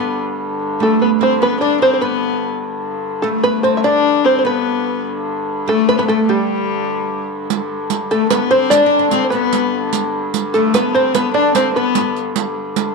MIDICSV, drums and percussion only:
0, 0, Header, 1, 2, 480
1, 0, Start_track
1, 0, Key_signature, 1, "major"
1, 0, Tempo, 405954
1, 221, Time_signature, 6, 3, 24, 8
1, 15311, End_track
2, 0, Start_track
2, 0, Title_t, "Riq"
2, 8870, Note_on_c, 9, 54, 61
2, 8988, Note_off_c, 9, 54, 0
2, 9341, Note_on_c, 9, 54, 58
2, 9459, Note_off_c, 9, 54, 0
2, 9588, Note_on_c, 9, 54, 20
2, 9707, Note_off_c, 9, 54, 0
2, 9818, Note_on_c, 9, 54, 69
2, 9937, Note_off_c, 9, 54, 0
2, 10299, Note_on_c, 9, 54, 69
2, 10417, Note_off_c, 9, 54, 0
2, 10775, Note_on_c, 9, 54, 58
2, 10893, Note_off_c, 9, 54, 0
2, 11018, Note_on_c, 9, 54, 21
2, 11136, Note_off_c, 9, 54, 0
2, 11264, Note_on_c, 9, 54, 61
2, 11383, Note_off_c, 9, 54, 0
2, 11737, Note_on_c, 9, 54, 55
2, 11855, Note_off_c, 9, 54, 0
2, 12225, Note_on_c, 9, 54, 62
2, 12343, Note_off_c, 9, 54, 0
2, 12460, Note_on_c, 9, 54, 19
2, 12578, Note_off_c, 9, 54, 0
2, 12699, Note_on_c, 9, 54, 67
2, 12817, Note_off_c, 9, 54, 0
2, 13179, Note_on_c, 9, 54, 64
2, 13297, Note_off_c, 9, 54, 0
2, 13655, Note_on_c, 9, 54, 69
2, 13773, Note_off_c, 9, 54, 0
2, 14131, Note_on_c, 9, 54, 71
2, 14250, Note_off_c, 9, 54, 0
2, 14383, Note_on_c, 9, 54, 18
2, 14501, Note_off_c, 9, 54, 0
2, 14610, Note_on_c, 9, 54, 64
2, 14728, Note_off_c, 9, 54, 0
2, 15091, Note_on_c, 9, 54, 65
2, 15209, Note_off_c, 9, 54, 0
2, 15311, End_track
0, 0, End_of_file